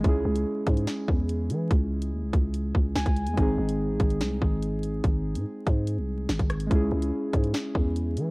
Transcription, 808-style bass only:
\new Staff \with { instrumentName = "808-style bass" } { \clef bass \time 4/4 \key cis \minor \tempo 4 = 144 cis,8 cis,8 r8 gis,8 r8 e,4 e8 | cis,4 dis,16 cis,16 cis,4 cis,8 cis,16 cis,8 e,16 | gis,,8 gis,,8. a,,16 gis,,8 bis,,8 gis,,4. | gis,,8. gis,16 r8 gis,8. bis,,8. gis,,16 gis,,8. |
cis,8 cis,8 r8 gis,8 r8 e,4 e8 | }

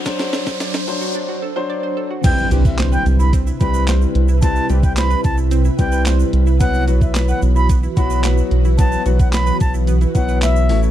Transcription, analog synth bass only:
\new Staff \with { instrumentName = "Analog synth bass" } { \clef bass \time 4/4 \key e \minor \tempo 4 = 110 r1 | r8 c,4 c,4 c,4 c,8~ | c,8 c,4 c,4 c,4 c,8~ | c,8 b,,4 b,,4 b,,4 b,,8~ |
b,,8 b,,4 b,,4 b,,4 a,,8 | }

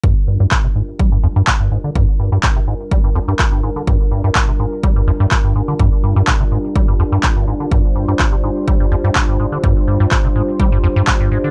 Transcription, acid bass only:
\new Staff \with { instrumentName = "Acid bass" } { \clef bass \time 4/4 \key g \phrygian \tempo 4 = 125 g,16 r16 g,16 g,16 bes,16 c16 aes,16 r16 g16 g,16 f,16 g,16 bes,16 g,16 aes,16 d16 | g,16 r16 g,16 g,16 bes,16 c16 aes,16 r16 g16 g,16 f,16 g,16 bes,16 g,16 aes,16 d16 | g,16 r16 g,16 g,16 bes,16 c16 aes,16 r16 g16 g,16 f,16 g,16 bes,16 g,16 aes,16 d16 | g,16 r16 g,16 g,16 bes,16 c16 aes,16 r16 g16 g,16 f,16 g,16 bes,16 g,16 aes,16 d16 |
g,16 r16 g,16 g,16 bes,16 c16 aes,16 r16 g16 g,16 f,16 g,16 bes,16 g,16 aes,16 d16 | g,16 r16 g,16 g,16 bes,16 c16 aes,16 r16 g16 g,16 f,16 g,16 bes,16 g,16 aes,16 d16 | }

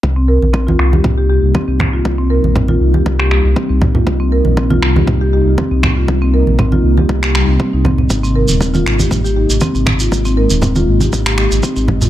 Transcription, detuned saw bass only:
\new Staff \with { instrumentName = "Detuned saw bass" } { \clef bass \time 4/4 \key c \minor \tempo 4 = 119 c,8. bes,,8. c,8 c,8. c,16 r16 c,8. | c,8. bes,,8. c,8 c,8. c,16 r16 c,8. | c,8. bes,,8. c,8 c,8. c,16 r16 c,8. | c,8. bes,,8. c,8 c,8. c,16 r16 c,8. |
aes,,8. ees,,8. aes,,8 aes,,8. aes,,16 r16 aes,,8. | aes,,8. ees,,8. aes,,8 aes,,8. aes,,16 r16 aes,,8. | }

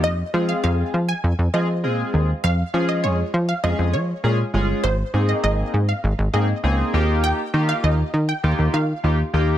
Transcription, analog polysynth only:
\new Staff \with { instrumentName = "Analog polysynth" } { \time 4/4 \key aes \major \tempo 4 = 100 r8 <aes c' f' aes'>4 r4 <aes c' f' aes'>16 r16 <aes c' f' aes'>4 | r8 <aes des' f' aes'>4 r8 <aes des' f' aes'>8 r8 <aes des' f' aes'>16 r16 <aes des' f' aes'>8 | r8 <bes c' ees' aes'>4 r4 <bes c' ees' aes'>16 r16 <bes c' ees' aes'>8 <bes ees' f' g'>8~ | <bes ees' f' g'>8 <bes ees' f' g'>4 r8 <bes ees' f' g'>8 r8 <bes ees' f' g'>16 r16 <bes ees' f' g'>8 | }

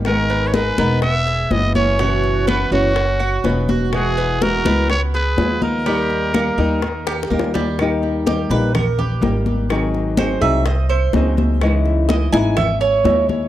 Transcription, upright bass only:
\new Staff \with { instrumentName = "Upright bass" } { \clef bass \time 4/4 \key dis \phrygian \tempo 4 = 125 gis,,4. e,,4. fis,,4~ | fis,,4. fis,,4. e,,4~ | e,,4. cis,4. dis,4~ | dis,4. dis,4. dis,4~ |
dis,4. ais,,4. gis,,4~ | gis,,4. bis,,4. cis,4~ | cis,4. gis,,4. dis,4 | }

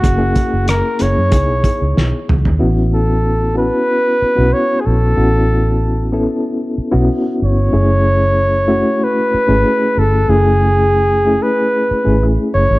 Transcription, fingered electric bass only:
\new Staff \with { instrumentName = "Fingered electric bass" } { \clef bass \time 4/4 \key a \lydian \tempo 4 = 94 fis,,8 r16 fis,,8 r16 fis,,16 fis,16 cis,16 b,,16 r16 cis,16 b,,16 r16 cis,16 dis,16 | a,,4.~ a,,16 r4 b,,16 r8 ais,,8 | a,,4.~ a,,16 r4 b,,16 r8 g,,8 | fis,,4.~ fis,,16 r4 gis,,16 r8 g,,8 |
fis,,4.~ fis,,16 r4 gis,,16 a,,16 r16 fis,,16 gis,,16 | }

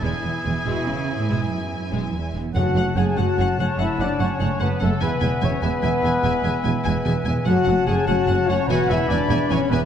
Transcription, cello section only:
\new Staff \with { instrumentName = "Cello section" } { \clef bass \time 12/8 \key e \major \tempo 4. = 98 e,8 e,8 e,8 b,8 cis8. a,16 gis,8 fis,4. e,4 | \key fis \minor fis,8 fis,8 fis,8 fis,8 fis,8 fis,8 fis,8 fis,8 fis,8 fis,8 fis,8 fis,8 | e,8 e,8 e,8 e,8 e,8 e,8 e,8 e,8 e,8 e,8 e,8 e,8 | fis,8 fis,8 fis,8 fis,8 fis,8 fis,8 e,8 e,8 e,8 e,8 e,8 e,8 | }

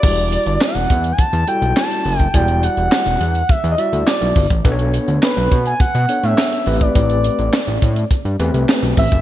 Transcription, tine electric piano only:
\new Staff \with { instrumentName = "Tine electric piano" } { \time 4/4 \key e \minor \tempo 4 = 104 << { <g' e''>16 r2. r8. | r1 | r1 | r1 | } \\ { <g e' fis' d''>4. r4 <g e' fis' a'>4 r8 | <g e' fis' d''>4. r4 <g e' fis' d''>4 r8 | <b d' a' b' cis''>4. r4 <b d' a' cis''>4 <a c' g' b'>8~ | <a c' g' b'>4 r4. <a c' g' b'>4 r8 | } >> }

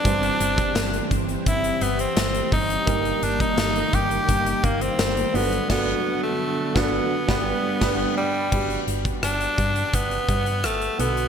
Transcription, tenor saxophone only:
\new Staff \with { instrumentName = "Tenor saxophone" } { \time 4/4 \key g \major \tempo 4 = 85 d'4. r8 e'8 b16 c'8. ees'8~ | ees'8 d'16 ees'8. g'4 bes16 c'8. b8 | b8. a8. b2 g8~ | g8 r8 d'4 b4 a8 b8 | }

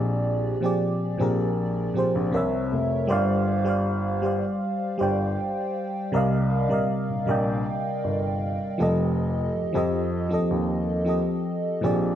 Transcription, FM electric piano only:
\new Staff \with { instrumentName = "FM electric piano" } { \time 4/4 \key c \minor \tempo 4 = 79 <bes, f c' g' aes' d''>8 r16 <bes, f c' g' aes' d''>8 r16 <bes, f c' g' aes' bes'>8. r16 <bes, f c' g' aes' c''>8 <c c' bes' des'' e''>8. r16 | <g g' c'' d'' f''>8 r16 <g g' c'' d'' f''>8 r16 <g g' c'' d'' f''>8. r16 <g g' c'' d'' g''>4 r8 | <c g bes' d'' ees'' f''>8 r16 <c g bes' d'' ees'' f''>8 r16 <c g bes' d'' ees'' g''>4~ <c g bes' d'' ees'' g''>16 r8. <f c' g' a' ees''>8~ | <f c' g' a' ees''>8 r16 <f c' g' a' ees''>8 r16 <f c' g' a' ees''>8. r16 <f c' g' a' ees''>4 <bes, f c' g' aes' d''>8 | }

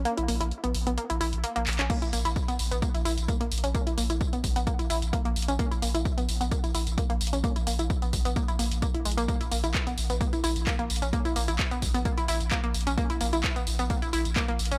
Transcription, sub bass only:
\new Staff \with { instrumentName = "Sub bass" } { \clef bass \time 4/4 \tempo 4 = 130 r16 bes,,16 bes,,16 bes,,16 r16 bes,,16 bes,,16 bes,,16 r16 bes,,16 bes,,16 bes,,16 r16 bes,,16 bes,,16 bes,,16 | r16 bes,,16 bes,,16 bes,,16 r16 bes,,16 bes,,16 bes,,16 r16 bes,,16 bes,,16 bes,,16 r16 bes,,16 bes,,16 bes,,16 | r16 bes,,16 bes,,16 bes,,16 r16 bes,,16 bes,,16 bes,,16 r16 bes,,16 bes,,16 bes,,16 r16 bes,,16 bes,,16 bes,,16 | r16 bes,,16 bes,,16 bes,,16 r16 bes,,16 bes,,16 bes,,16 r16 bes,,16 bes,,16 bes,,16 r16 bes,,16 bes,,16 bes,,16 |
r16 bes,,16 bes,,16 bes,,16 r16 bes,,16 bes,,16 bes,,16 r16 bes,,16 bes,,16 bes,,16 r16 bes,,16 bes,,16 bes,,16 | r16 bes,,16 bes,,16 bes,,16 r16 bes,,16 bes,,16 bes,,16 r16 bes,,16 bes,,16 bes,,16 r16 bes,,16 bes,,16 bes,,16 | r16 bes,,16 bes,,16 bes,,16 r16 bes,,16 bes,,16 bes,,16 r16 bes,,16 bes,,16 bes,,16 r16 bes,,16 bes,,16 bes,,16 | r16 bes,,16 bes,,16 bes,,16 r16 bes,,16 bes,,16 bes,,16 r16 bes,,16 bes,,16 bes,,16 r16 bes,,16 bes,,16 bes,,16 | }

